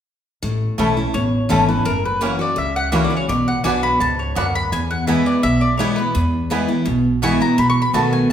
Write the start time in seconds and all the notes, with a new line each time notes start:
0.43 A1 A2
0.78 B1 E3 A3 C#4 E4 C#5 A5
0.97 C#4 E4
1.14 A1 E2 C#5
1.49 G#1 E3 A3 C#4 E4 C#5 A5
1.68 C#4 E4 B4
1.85 F#1 F#2 A#4
2.05 B4
2.21 E3 A#3 C#4 E4 F#4 C#5 F#5
2.39 C#4 F#4 D5
2.56 C#2 C#3 E5
2.76 F#5
2.92 E3 A#3 C#4 E4 F#4 C#5 E5 F#5
3.04 D5
3.10 C#4 F#4
3.17 C#5
3.28 B1 B2 D5
3.48 F#5
3.64 B1 F#3 B3 D4 F#4 D5 F#5 G#5
3.83 B5
4.00 C#2 G#2 A5
4.19 C#5
4.35 D2 F#2 B3 D4 F#4 D5 F#5
4.55 B5
4.72 E2 G#5
4.91 F#5
5.07 E3 G#3 B3 E4 B4 E5 G#5
5.26 D5
5.43 B1 B2 E5
5.61 D5
5.77 E3 G#3 B3 E4 B4 C#5 G#5
5.96 B3 E4 B4
6.15 E2
6.50 E3 G#3 B3 E4 B4 G#5
6.68 B3 E4
6.86 B1 B2
7.22 E3 G#3 B3 E4 B4 G#5 C#6
7.40 B3 E4 A#5
7.58 B1 B2 B5
7.70 C#6
7.82 B5
7.93 B1 D#3 A3 B3 D#4 F#4 D#5 A5
8.13 G#5